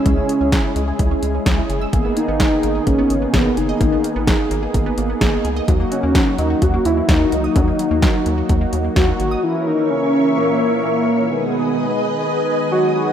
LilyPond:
<<
  \new Staff \with { instrumentName = "String machine" } { \time 4/4 \key gis \minor \tempo 4 = 128 r1 | r1 | r1 | r1 |
r1 | <ais' cis'' e'' cis'''>1 | <b' dis'' gis'' dis'''>1 | }
  \new Staff \with { instrumentName = "Analog synth lead" } { \time 4/4 \key gis \minor cis'2 r2 | r8 dis'4. cis'4 b8 dis'8~ | dis'4. r2 r8 | r8 cis'4 dis'8 fis'8 e'8 dis'4 |
dis'2 r4 fis'8.~ fis'32 fis'32 | e'8 dis'8 cis'4 ais4 ais4 | b2 r4 fis'8 fis'8 | }
  \new Staff \with { instrumentName = "Analog polysynth" } { \time 4/4 \key gis \minor <gis cis' e' gis'>1 | <ais b dis' gis'>1~ | <ais b dis' gis'>1 | <fis ais dis' fis'>1~ |
<fis ais dis' fis'>1 | <e ais cis' e' ais'>1 | <dis gis b dis' gis'>1 | }
  \new Staff \with { instrumentName = "Synth arpeggio sound" } { \time 4/4 \key gis \minor gis16 cis'16 gis16 cis'16 gis'16 e'16 gis16 gis'16 gis16 cis'16 gis16 cis'16 gis'16 e'16 gis'16 e'''16 | ais16 b16 ais16 b16 gis'16 dis'16 ais16 gis'16 ais16 b16 ais16 b16 gis'16 dis'16 gis'16 dis''16 | ais16 b16 ais16 b16 gis'16 dis'16 ais16 gis'16 ais16 b16 ais16 b16 gis'16 dis'16 gis'16 dis''16 | fis16 ais16 fis16 ais16 fis'16 dis'16 fis16 fis'16 fis16 ais16 fis16 ais16 fis'16 dis'16 fis'16 dis'''16 |
fis16 ais16 fis16 ais16 fis'16 dis'16 fis16 fis'16 fis16 ais16 fis16 ais16 fis'16 dis'16 fis'16 dis'''16 | r1 | r1 | }
  \new Staff \with { instrumentName = "Analog synth bass" } { \clef bass \time 4/4 \key gis \minor cis,8 r16 cis,8 r16 cis,8 cis,8 cis,8 cis,8 fis,,8 | gis,,8 r16 gis,,8 r16 gis,,8 gis,,8 gis,,8 gis,,8 fis,,8 | gis,,8 r16 gis,,8 r16 gis,,8 gis,,8 gis,,8 gis,,8 cis,8 | dis,8 r16 dis,8 r16 dis,8 dis,8 dis,8 dis,8 cis,8 |
dis,8 r16 dis,8 r16 dis,8 dis,8 dis,8 dis,8 gis,,8 | r1 | r1 | }
  \new DrumStaff \with { instrumentName = "Drums" } \drummode { \time 4/4 <hh bd>8 hh8 <hh bd sn>8 hh8 <hh bd>8 hh8 <hh bd sn>8 hh8 | <hh bd>8 hh8 <hh bd sn>8 hh8 <hh bd>8 hh8 <hh bd sn>8 hh8 | <hh bd>8 hh8 <hh bd sn>8 hh8 <hh bd>8 hh8 <hh bd sn>8 hh8 | <hh bd>8 hh8 <hh bd sn>8 hh8 <hh bd>8 hh8 <hh bd sn>8 hh8 |
<hh bd>8 hh8 <hh bd sn>8 hh8 <hh bd>8 hh8 <hh bd sn>8 hh8 | r4 r4 r4 r4 | r4 r4 r4 r4 | }
>>